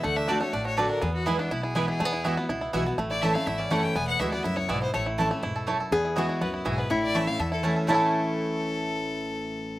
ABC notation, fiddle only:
X:1
M:4/4
L:1/8
Q:1/4=245
K:A
V:1 name="Fiddle"
f e d c d c B _B | G F E D E G B G- | G4 z4 | z d e =f e d ^f =g |
g f e d e c d =c | c z6 z | z4 B E G B | c d e =f e A z2 |
A8- | A8 |]